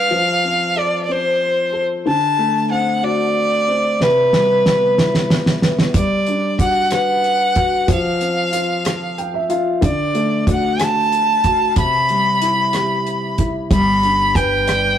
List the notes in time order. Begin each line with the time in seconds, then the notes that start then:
Already playing: G3 D4 B4 D5 F5
0.10 F3
0.44 C4
0.76 A4 D5
1.05 C4 D5
1.11 C5
1.72 A4
2.06 D3 A5
2.38 A3
2.71 C4 F#5
3.02 F#4 D5
3.68 C4
4.00 C3 B4, snare
4.33 G3, snare
4.65 B3, snare
4.97 E4, snare
5.15 snare
5.30 snare
5.46 snare
5.62 B3, snare
5.79 snare
5.94 G3 D5, kick, closed hi-hat
6.27 D4, closed hi-hat
6.59 F#4 F#5, kick, closed hi-hat
6.91 B4 F#5, cross-stick, closed hi-hat
7.24 closed hi-hat
7.54 F#4, kick, closed hi-hat
7.87 F3, kick, closed hi-hat
7.93 F5
8.21 C4, closed hi-hat
8.52 F4, closed hi-hat
8.85 A4, cross-stick, closed hi-hat
9.18 G5, closed hi-hat
9.34 E5
9.49 F4 F5, closed hi-hat
9.81 D3 D5, kick, closed hi-hat
10.14 A3, closed hi-hat
10.46 F#4 F#5, kick, closed hi-hat
10.79 A4 A5, cross-stick, closed hi-hat
11.12 closed hi-hat
11.44 F#4, kick, closed hi-hat
11.76 C3 B5, kick, closed hi-hat
12.09 G3, closed hi-hat
12.41 E4, closed hi-hat
12.73 G4, cross-stick, closed hi-hat
13.07 closed hi-hat
13.38 E4, kick, closed hi-hat
13.71 G1 G3 B5, kick, closed hi-hat
14.03 D4, closed hi-hat
14.35 B4 G5, kick, closed hi-hat
14.67 D5, cross-stick, closed hi-hat